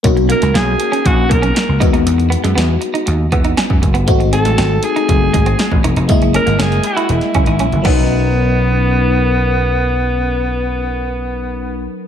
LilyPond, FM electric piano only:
\new Staff \with { instrumentName = "FM electric piano" } { \time 4/4 \key b \major \tempo 4 = 119 <ais cis' dis' fis'>2.~ <ais cis' dis' fis'>8 <gis b dis' fis'>8~ | <gis b dis' fis'>2.~ <gis b dis' fis'>8 r8 | <a bis dis' fis'>1 | <gis ais e' dis''>2.~ <gis ais e' dis''>8 <fis cis' dis' ais'>8~ |
<fis cis' dis' ais'>1~ | <fis cis' dis' ais'>1 | }